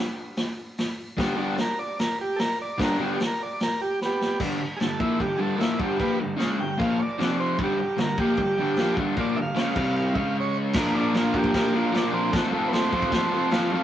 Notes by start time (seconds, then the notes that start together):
0.36 snare, open hi-hat
0.78 snare, open hi-hat
1.17 G2 D3 G3 B3 D4 G4, kick, snare, open hi-hat
1.37 G2 D3 G3 B3 D4 G4
1.55 A4, snare, open hi-hat
1.61 A#4
1.79 D5
1.99 A#4, snare, open hi-hat
2.21 G4
2.36 A4 A#4, snare, open hi-hat
2.62 D5
2.78 G2 D3 G3 B3 D4 G4, kick, snare, open hi-hat
2.83 A#4
2.99 G2 D3 G3 B3 D4 G4
3.04 G4
3.20 A4, snare, open hi-hat
3.26 A#4
3.43 D5
3.60 A#4, snare, open hi-hat
3.82 G4
4.01 B3, snare
4.05 G4
4.21 snare
4.40 G2 D3 G3, kick, crash
4.60 muted overdriven electric guitar stroke
4.77 G#4, crash
4.81 G2 D3 A4, snare
5.00 A#2 F3 A#3 E4, kick
5.19 G2 D3 G4, kick, crash
5.37 G2 D3 G3 G#4
5.41 A4
5.57 A#2 F3 A#3 E4, snare, crash
5.78 G2 D3 G3, kick
5.83 G4
5.99 A#2 F3 A#3 G4 B4, kick, crash
6.19 G2 D3
6.36 C#3 G#3 C#4, snare, crash
6.57 G2 D3 G5
6.78 A#2 F3 A#3 F5, kick, crash
6.99 C#5 D5, muted overdriven electric guitar stroke
7.19 F2 C3 F3, snare, crash
7.40 C5
7.59 G2 D3 G3, kick, crash
7.63 G4
7.80 G4, muted overdriven electric guitar stroke
7.97 G2 D3 A#4, snare, crash
8.18 A#2 F3 A#3 G4, kick
8.37 G2 D3, kick, crash
8.59 G2 D3 G3
8.77 A#2 F3 A#3, snare, crash
8.97 G2 D3 G3, kick
9.17 A#2 F3 A#3 D5, kick, crash
9.36 G2 D3 E5
9.42 F5
9.55 C#3 G#3 C#4, snare, crash
9.60 F5
9.75 C3 G3 C4, kick, crash
9.96 F5, crash
10.15 C#3 G#3 C#4 E5, kick
10.19 F5
10.40 C#5
10.73 A#2 F3 A#3 D4, kick, snare, crash
10.77 F4 A#4
10.93 A#2 F3 A#3 D4 F4 A#4
11.13 A#2 F3 A#3 D4 F4 A#4, snare, crash
11.20 F4
11.33 A#2 F3 A#3 D4 F4 F#4 A#4, kick
11.38 G4
11.44 kick
11.52 A#2 F3 A#3 D4 F4 A#4, kick, snare, crash
11.73 A#2 F3 A#3 D4 F4 A#4
11.92 A#2 F3 A#3 D4 F4 A#4, snare, crash
12.12 A#2 F3 A#3 C4 D4 F4 A#4
12.30 F3 A3 C4 F4 A4, kick, crash
12.34 snare
12.51 F3 A3 C4 F4 A4
12.68 F3 A3 B4
12.73 C4 F4 A4 C5, snare, crash
12.91 F3 A3 C4 F4 A4, kick
13.02 kick
13.11 F3 A3 C4 F4 A4, kick, snare, crash
13.31 F3 A3 C4 F4 A4
13.51 F3 A3 C4 F4 A4, snare, crash
13.73 F3 A3 C4 F4 A4